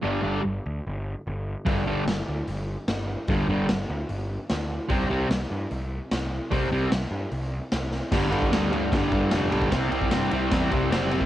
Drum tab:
CC |----------------|----------------|----------------|----------------|
RD |----------------|----------------|----------------|----------------|
HH |----------------|o---o---o---o---|o---o---o---o---|o---o---o---o---|
SD |----------------|----o-------o---|----o-------o---|----o-------o---|
BD |----------------|o---------------|o---------------|o---------------|

CC |----------------|x---------------|----------------|
RD |----------------|--x-x-x-x-x-x-x-|x-x-x-x-x-x-x-x-|
HH |o---o---o---o---|----------------|----------------|
SD |----o-------o-o-|o---o---o---o---|o---o---o---o---|
BD |o---------------|o--o----o-o----o|o--o----o-o----o|